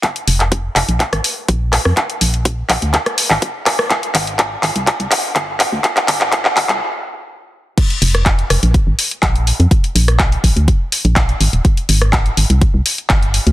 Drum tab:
CC |----------------|----------------|----------------|----------------|
HH |xxoxx-oxxxo-x-o-|xxoxx-oxxxo-x-o-|xxoxx-oxxxo-x-o-|xxoxx-ox--------|
CP |x--x--x-x-----x-|x-----x-x--x--x-|x-x-x-x-x-x-x-x-|xxxxxxxx--------|
SD |---------r----rr|---------r----rr|----------------|----------------|
BD |o---o---o---o---|o---o-o-o---o---|o---o---o---o---|o---o-o---------|

CC |x---------------|----------------|----------------|
HH |xxoxxxoxx-oxxxox|xxoxxxoxx-oxxxox|xxoxxxoxx-oxxxox|
CP |----x-------x---|----x-------x---|----x-------x---|
SD |---r--r---------|---r------------|---r------------|
BD |o---o---o---o---|o---o-o-o---o---|o---o---o---o---|